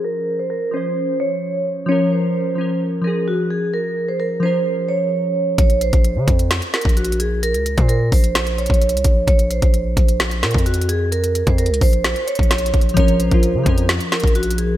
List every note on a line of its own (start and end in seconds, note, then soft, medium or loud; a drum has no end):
0.00 0.71 F3 loud
0.00 0.74 C#4 medium
0.00 1.91 A#4 loud
0.00 0.77 C5 medium
0.04 0.37 A#4 medium
0.39 0.49 C5 medium
0.50 0.70 A#4 medium
0.71 1.37 F3 medium
0.71 1.39 C#4 medium
0.71 1.17 C5 medium
0.77 1.40 C5 medium
1.20 1.85 C#5 medium
1.86 2.36 F3 loud
1.86 2.38 C#4 medium
1.86 2.09 C#5 loud
1.92 2.39 A#4 loud
2.12 2.77 C5 medium
2.55 2.89 F3 medium
2.55 2.91 C#4 medium
2.61 2.92 A#4 medium
3.02 3.68 F3 medium
3.02 3.69 C#4 medium
3.02 3.24 A#4 medium
3.07 3.71 G#4 medium
3.28 3.48 F#4 medium
3.51 3.71 G#4 medium
3.74 4.06 A#4 medium
4.08 4.18 C5 medium
4.20 4.40 A#4 medium
4.40 5.06 F3 medium
4.40 5.08 C#4 medium
4.40 4.86 C5 medium
4.45 5.09 A#4 medium
4.89 5.54 C#5 medium
5.58 5.92 A#1 loud
5.58 5.78 C#5 loud
5.58 kick loud
5.58 closed hi-hat medium
5.70 closed hi-hat medium
5.81 6.47 C5 medium
5.81 closed hi-hat medium
5.93 6.17 A#1 loud
5.93 kick loud
5.93 closed hi-hat medium
6.04 closed hi-hat medium
6.16 6.27 C#3 loud
6.28 6.61 F2 loud
6.28 kick loud
6.28 closed hi-hat medium
6.39 closed hi-hat medium
6.51 snare loud
6.51 closed hi-hat medium
6.62 closed hi-hat medium
6.74 6.94 A#4 medium
6.74 snare loud
6.74 closed hi-hat soft
6.81 7.56 A#1 loud
6.81 kick medium
6.81 closed hi-hat medium
6.89 closed hi-hat medium
6.97 7.17 F#4 medium
6.97 closed hi-hat medium
7.04 closed hi-hat medium
7.12 closed hi-hat medium
7.20 7.40 G#4 medium
7.20 closed hi-hat medium
7.43 7.75 A#4 loud
7.43 closed hi-hat medium
7.54 7.76 C#2 loud
7.54 closed hi-hat medium
7.66 closed hi-hat medium
7.78 8.11 A#2 loud
7.78 7.88 C5 medium
7.78 kick loud
7.78 closed hi-hat medium
7.89 8.09 A#4 medium
7.89 closed hi-hat medium
8.12 8.68 A#1 loud
8.12 8.56 C5 medium
8.12 kick loud
8.12 open hi-hat medium
8.24 closed hi-hat medium
8.35 snare loud
8.35 closed hi-hat medium
8.47 closed hi-hat medium
8.58 9.24 C#5 medium
8.58 closed hi-hat soft
8.66 8.94 A#1 loud
8.66 kick medium
8.66 closed hi-hat medium
8.74 closed hi-hat medium
8.82 closed hi-hat medium
8.89 9.04 C2 medium
8.89 closed hi-hat medium
8.97 closed hi-hat medium
9.04 9.27 A#1 loud
9.04 kick loud
9.04 closed hi-hat medium
9.27 9.61 A#1 loud
9.27 9.47 C#5 loud
9.27 kick loud
9.27 closed hi-hat medium
9.39 closed hi-hat medium
9.51 10.16 C5 medium
9.51 closed hi-hat medium
9.62 9.95 A#1 loud
9.62 kick medium
9.62 closed hi-hat medium
9.74 closed hi-hat medium
9.97 10.44 A#1 loud
9.97 kick loud
9.97 closed hi-hat medium
10.08 closed hi-hat medium
10.20 snare loud
10.20 closed hi-hat medium
10.31 closed hi-hat medium
10.43 10.54 A#2 loud
10.43 10.63 A#4 medium
10.43 snare loud
10.43 closed hi-hat soft
10.51 11.43 F2 loud
10.51 kick medium
10.51 closed hi-hat medium
10.58 closed hi-hat medium
10.66 10.86 F#4 medium
10.66 closed hi-hat medium
10.74 closed hi-hat medium
10.81 closed hi-hat medium
10.89 11.09 G#4 medium
10.89 closed hi-hat medium
11.12 11.45 A#4 loud
11.12 closed hi-hat medium
11.24 closed hi-hat medium
11.35 closed hi-hat medium
11.47 11.71 F2 loud
11.47 11.57 C5 medium
11.47 kick medium
11.47 closed hi-hat medium
11.58 11.78 A#4 medium
11.58 closed hi-hat medium
11.66 11.81 C#2 loud
11.66 closed hi-hat medium
11.74 closed hi-hat medium
11.81 12.15 A#1 loud
11.81 12.25 C5 medium
11.81 kick loud
11.81 open hi-hat medium
11.93 closed hi-hat medium
12.04 snare loud
12.04 closed hi-hat medium
12.16 closed hi-hat medium
12.27 12.93 C#5 medium
12.27 closed hi-hat medium
12.35 12.72 A#1 loud
12.35 kick medium
12.35 closed hi-hat medium
12.43 closed hi-hat soft
12.51 snare loud
12.51 closed hi-hat medium
12.58 closed hi-hat medium
12.66 closed hi-hat medium
12.74 12.96 A#1 loud
12.74 kick medium
12.74 closed hi-hat medium
12.81 closed hi-hat medium
12.89 closed hi-hat soft
12.94 13.30 A#1 loud
12.94 13.20 F3 loud
12.94 13.21 C#4 medium
12.94 13.17 C#5 loud
12.94 kick loud
12.94 closed hi-hat medium
13.00 13.23 A#4 loud
13.08 closed hi-hat medium
13.20 13.85 C5 medium
13.20 closed hi-hat medium
13.28 13.56 A#1 loud
13.28 13.54 F3 medium
13.28 13.56 C#4 medium
13.28 kick medium
13.28 closed hi-hat medium
13.34 13.57 F4 medium
13.43 closed hi-hat medium
13.54 13.65 C#3 loud
13.63 13.99 F2 loud
13.63 14.30 F3 medium
13.63 14.31 C#4 medium
13.63 kick loud
13.63 closed hi-hat medium
13.69 14.32 A#4 medium
13.78 closed hi-hat medium
13.89 snare loud
13.89 closed hi-hat medium
14.00 closed hi-hat medium
14.12 14.32 A#4 medium
14.12 snare loud
14.12 closed hi-hat soft
14.20 14.77 A#1 loud
14.20 kick medium
14.20 closed hi-hat soft
14.27 closed hi-hat medium
14.35 14.55 F#4 medium
14.35 closed hi-hat medium
14.43 closed hi-hat medium
14.51 closed hi-hat medium
14.58 14.77 G#4 medium
14.58 closed hi-hat medium